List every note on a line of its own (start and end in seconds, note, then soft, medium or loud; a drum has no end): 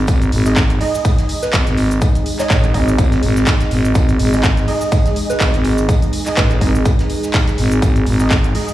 0.00 8.74 D#4 medium
0.00 8.74 G#4 medium
0.00 8.74 D#5 medium
0.00 0.73 B5 medium
0.07 0.31 G#1 loud
0.07 8.74 G#3 medium
0.07 8.74 G#4 medium
0.07 7.81 D#5 medium
0.07 kick loud
0.07 closed hi-hat medium
0.07 tambourine medium
0.07 cabasa medium
0.22 closed hi-hat medium
0.22 cabasa soft
0.32 0.79 G#1 loud
0.32 open hi-hat loud
0.32 tambourine medium
0.46 0.57 G#3 medium
0.46 0.57 D#4 medium
0.46 0.57 G#4 medium
0.46 0.57 D#5 medium
0.46 snare soft
0.46 cabasa medium
0.56 kick loud
0.56 snare loud
0.56 clap loud
0.56 closed hi-hat medium
0.56 tambourine medium
0.56 cabasa medium
0.70 8.47 G#5 medium
0.70 closed hi-hat medium
0.70 cabasa soft
0.81 2.36 G#3 loud
0.81 2.36 D#4 medium
0.81 2.36 G#4 medium
0.81 2.36 D#5 loud
0.81 open hi-hat medium
0.81 open hi-hat loud
0.95 cabasa medium
1.05 kick loud
1.05 closed hi-hat medium
1.05 tambourine medium
1.05 cabasa medium
1.18 snare soft
1.18 closed hi-hat medium
1.18 cabasa soft
1.29 open hi-hat loud
1.29 tambourine medium
1.42 1.56 B4 medium
1.42 snare medium
1.42 cabasa medium
1.53 1.65 G#1 medium
1.53 kick loud
1.53 snare loud
1.53 clap loud
1.53 closed hi-hat medium
1.53 tambourine medium
1.53 cabasa medium
1.67 2.00 G#1 loud
1.67 snare medium
1.67 closed hi-hat medium
1.67 cabasa soft
1.77 open hi-hat loud
1.77 tambourine medium
1.91 closed hi-hat soft
1.91 cabasa medium
2.01 kick loud
2.01 closed hi-hat medium
2.01 tambourine medium
2.01 cabasa medium
2.15 closed hi-hat soft
2.15 closed hi-hat medium
2.15 cabasa soft
2.26 open hi-hat loud
2.26 tambourine medium
2.39 2.72 G#3 loud
2.39 2.72 D#4 medium
2.39 2.72 G#4 medium
2.39 3.07 C#5 loud
2.39 2.72 D#5 loud
2.39 snare medium
2.39 clap soft
2.39 cabasa medium
2.50 2.73 A1 medium
2.50 kick loud
2.50 snare loud
2.50 clap loud
2.50 closed hi-hat medium
2.50 tambourine medium
2.50 cabasa medium
2.64 closed hi-hat medium
2.64 cabasa soft
2.74 2.97 G#1 medium
2.74 2.89 G#3 medium
2.74 2.89 D#4 medium
2.74 2.89 G#4 medium
2.74 2.89 D#5 medium
2.74 kick medium
2.74 open hi-hat loud
2.74 tambourine medium
2.88 cabasa medium
2.98 3.21 G#1 loud
2.98 kick loud
2.98 closed hi-hat medium
2.98 tambourine medium
2.98 cabasa medium
3.12 snare medium
3.12 closed hi-hat medium
3.12 cabasa soft
3.23 3.45 G#1 loud
3.23 open hi-hat loud
3.23 tambourine medium
3.36 snare medium
3.36 closed hi-hat soft
3.36 cabasa medium
3.47 kick loud
3.47 snare loud
3.47 clap loud
3.47 closed hi-hat medium
3.47 tambourine medium
3.47 cabasa medium
3.60 snare soft
3.60 closed hi-hat medium
3.60 cabasa soft
3.71 3.94 G#1 medium
3.71 snare medium
3.71 open hi-hat loud
3.71 tambourine medium
3.84 closed hi-hat soft
3.84 cabasa medium
3.95 4.18 G#1 loud
3.95 kick loud
3.95 closed hi-hat medium
3.95 tambourine medium
3.95 cabasa medium
4.09 closed hi-hat medium
4.09 cabasa soft
4.19 4.66 G#1 loud
4.19 open hi-hat loud
4.19 tambourine medium
4.33 4.45 G#3 medium
4.33 4.45 D#4 medium
4.33 4.45 G#4 medium
4.33 4.45 D#5 medium
4.33 snare soft
4.33 cabasa medium
4.44 kick loud
4.44 snare loud
4.44 clap loud
4.44 closed hi-hat medium
4.44 tambourine medium
4.44 cabasa medium
4.57 closed hi-hat medium
4.57 cabasa soft
4.68 6.23 G#3 loud
4.68 6.23 D#4 medium
4.68 6.23 G#4 medium
4.68 6.23 D#5 loud
4.68 open hi-hat loud
4.68 open hi-hat medium
4.81 cabasa medium
4.92 kick loud
4.92 closed hi-hat medium
4.92 tambourine medium
4.92 cabasa medium
5.05 snare soft
5.05 closed hi-hat medium
5.05 cabasa soft
5.16 open hi-hat loud
5.16 tambourine medium
5.29 5.43 B4 loud
5.29 snare medium
5.29 closed hi-hat soft
5.29 cabasa medium
5.40 5.52 G#1 medium
5.40 kick loud
5.40 snare loud
5.40 clap loud
5.40 closed hi-hat medium
5.40 tambourine loud
5.40 cabasa medium
5.54 5.87 G#1 loud
5.54 snare soft
5.54 closed hi-hat medium
5.54 cabasa soft
5.64 open hi-hat loud
5.64 tambourine medium
5.78 closed hi-hat soft
5.78 cabasa medium
5.89 kick loud
5.89 closed hi-hat medium
5.89 tambourine medium
5.89 cabasa medium
6.02 closed hi-hat soft
6.02 cabasa soft
6.13 open hi-hat loud
6.13 tambourine medium
6.26 6.59 G#3 loud
6.26 6.59 D#4 medium
6.26 6.59 G#4 medium
6.26 6.59 D#5 loud
6.26 snare soft
6.26 clap soft
6.26 open hi-hat medium
6.26 cabasa medium
6.36 6.60 A1 medium
6.36 6.86 B4 loud
6.36 kick loud
6.36 snare loud
6.36 clap loud
6.36 closed hi-hat medium
6.36 tambourine medium
6.36 cabasa medium
6.50 closed hi-hat medium
6.50 cabasa soft
6.61 6.84 G#1 loud
6.61 6.76 G#3 medium
6.61 6.76 D#4 medium
6.61 6.76 G#4 medium
6.61 6.76 D#5 loud
6.61 kick medium
6.61 open hi-hat loud
6.61 tambourine medium
6.75 cabasa medium
6.85 kick loud
6.85 closed hi-hat medium
6.85 tambourine medium
6.85 cabasa medium
6.99 snare medium
6.99 closed hi-hat medium
6.99 cabasa soft
7.09 open hi-hat loud
7.09 tambourine medium
7.23 snare medium
7.23 closed hi-hat soft
7.23 cabasa medium
7.33 kick loud
7.33 snare loud
7.33 clap loud
7.33 closed hi-hat medium
7.33 tambourine medium
7.33 cabasa medium
7.47 snare soft
7.47 closed hi-hat medium
7.47 cabasa soft
7.58 7.81 G#1 loud
7.58 snare medium
7.58 open hi-hat loud
7.58 tambourine medium
7.71 closed hi-hat soft
7.71 cabasa medium
7.82 8.05 G#1 loud
7.82 8.74 F#5 medium
7.82 kick loud
7.82 closed hi-hat medium
7.82 tambourine medium
7.82 cabasa medium
7.96 closed hi-hat medium
7.96 cabasa soft
8.06 8.53 G#1 loud
8.06 open hi-hat loud
8.06 tambourine medium
8.20 8.32 G#3 medium
8.20 8.32 D#4 medium
8.20 8.32 G#4 medium
8.20 8.32 D#5 medium
8.20 snare soft
8.20 cabasa medium
8.31 kick loud
8.31 snare loud
8.31 clap loud
8.31 closed hi-hat medium
8.31 tambourine medium
8.31 cabasa medium
8.44 8.74 B5 medium
8.44 closed hi-hat medium
8.44 cabasa soft
8.55 8.74 G#3 medium
8.55 8.74 D#4 medium
8.55 8.74 G#4 medium
8.55 8.74 D#5 loud
8.55 open hi-hat medium
8.55 open hi-hat loud
8.68 cabasa medium